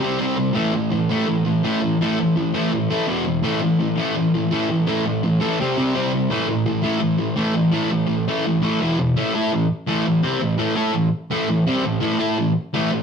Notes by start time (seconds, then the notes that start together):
0.02 C3 G3 C4
0.19 C3 G3 C4
0.37 C3 G3
0.54 A2 E3 A3
0.74 A2 E3
0.92 A2 E3
1.11 A2 E3 A3
1.28 A2 E3
1.46 A2 E3
1.64 A2 E3 A3
1.81 A2 E3
2.01 A2 E3 A3
2.20 A2 E3
2.36 A2 E3
2.54 A2 E3 A3
2.71 A2 E3
2.90 A2 E3 A3
3.08 E2 B2 E3
3.26 E2 B2
3.43 A2 E3 A3
3.61 A2 E3
3.79 A2 E3
3.96 A2 E3 A3
4.15 A2 E3
4.34 A2 E3
4.51 A2 E3 A3
4.70 A2 E3
4.87 A2 E3 A3
5.06 A2 E3
5.23 A2 E3
5.40 A2 E3 A3
5.60 C3 G3 C4
5.77 C3 G3 C4
5.95 C3 G3 C4
6.13 C3 G3
6.30 A2 E3 A3
6.48 A2 E3
6.66 A2 E3
6.82 A2 E3 A3
7.00 A2 E3
7.18 A2 E3
7.36 A2 E3 A3
7.54 A2 E3
7.71 A2 E3 A3
7.90 A2 E3
8.06 A2 E3
8.28 A2 E3 A3
8.45 A2 E3
8.62 A2 E3 A3
8.81 E2 B2 E3
8.99 E2 B2
9.17 A2 E3 A3
9.34 A3 E4 A4
9.52 A2 E3
9.87 A2 E3 A3
10.06 A2 E3
10.23 C3 G3 C4
10.40 A2 E3
10.58 A2 E3 A3
10.76 A3 E4 A4
10.93 A2 E3
11.31 A2 E3 A3
11.48 A2 E3
11.67 C3 G3 C4
11.84 A2 E3
12.01 A2 E3 A3
12.19 A3 E4 A4
12.38 A2 E3
12.73 A2 E3 A3
12.91 A2 E3